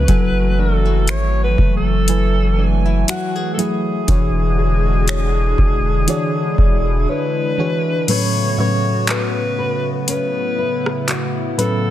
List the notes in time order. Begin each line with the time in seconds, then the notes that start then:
Already playing: C#3 A3 B3 E4 F4 B4
0.08 F#1 E3 F#3 E4 F#4 A4 G#5, kick, closed hi-hat
0.58 D4 A4
0.85 E4
1.08 G#1 C#5, finger snap, closed hi-hat
1.43 B4
1.58 F#1 A3, kick
1.77 A4
2.08 F#3 E4 B4 G#5, closed hi-hat
2.58 D4
2.85 E4
3.08 F#4, finger snap, closed hi-hat
3.36 G#4
3.54 F#3 A4
3.58 A3 E4 G#4, closed hi-hat
4.08 E1 D3 E3 G#3 D4 F#4 G#4 C#5, kick, closed hi-hat
4.59 G#4
5.08 C#5, finger snap, closed hi-hat
5.58 E1 D4, kick
6.07 E3 D4 E4 F#4 G#4 C#5 D5, closed hi-hat
6.58 E1 G#4, kick
7.09 B4 C#5
7.58 E3 D4 F#4 G#4 C#5
8.08 A2 C#3 F#3 A3 B3 C#4 F#4 B4 C#5, closed hi-hat, crash
8.58 A2 F#3 C#4 F#4 B4 C#5 E5
9.07 C#4 B4, clap, closed hi-hat
9.59 B4
10.08 C#4 E4 B4, closed hi-hat
10.58 B4
10.86 cross-stick
11.08 F#4, clap, closed hi-hat
11.58 A2 F#3 C#4 A4 B4, closed hi-hat